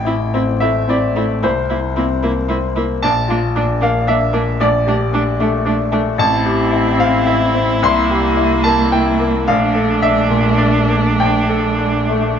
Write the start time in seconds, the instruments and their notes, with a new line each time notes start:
Already playing: upright piano A1 G5, double bass A1
0.05 cello C4, upright piano E4, viola E4
0.34 upright piano C4, cello C4, viola E4
0.60 upright piano A3 E5, cello C4, viola E4
0.88 upright piano C4 D5, cello C4, viola E4
1.15 upright piano A3, cello C4, viola E4
1.43 double bass C2, upright piano C2 C5, cello A#3, viola E4
1.70 cello A#3, viola E4, upright piano E4
1.96 cello A#3, upright piano C4, viola E4
2.23 upright piano A#3, cello A#3, viola E4
2.49 cello A#3, upright piano C4, viola E4
2.76 cello A#3, upright piano A#3, viola E4
3.03 double bass A#1, upright piano A#1 A5, cello A#3, viola D4
3.28 cello A#3, viola D4, upright piano F4
3.55 cello A#3, upright piano D4, viola D4
3.81 upright piano A#3 F5, cello A#3, viola D4
4.07 cello A#3, upright piano D4 E5, viola D4
4.33 upright piano A#3, cello A#3, viola D4
4.60 upright piano A#1 D5, cello A3, viola D4
4.86 cello A3, viola D4, upright piano G4
5.13 cello A3, upright piano D4, viola D4
5.40 upright piano A3, cello A3, viola D4
5.65 cello A3, upright piano D4, viola D4
5.92 upright piano A3, cello A3, viola D4
6.18 upright piano A1 A5, double bass A1, cello C4, viola E4
6.46 upright piano G4
6.73 upright piano E4
6.99 upright piano C4 F5
7.26 upright piano E4 E5
7.54 upright piano C4
7.82 double bass C2, upright piano C2 C6, cello A#3
8.11 upright piano G4
8.37 upright piano E4
8.64 upright piano A#3 A5
8.92 upright piano E4 G5
9.20 upright piano A#3
9.47 double bass A#1, upright piano A#1 F5, cello A3, viola D4
9.75 upright piano A4
10.02 upright piano D4 E5
10.30 upright piano A#2
10.58 upright piano D4 D5
10.88 upright piano A#3
11.20 upright piano A#1 G5
11.49 upright piano A4
11.79 upright piano D4
12.09 upright piano A3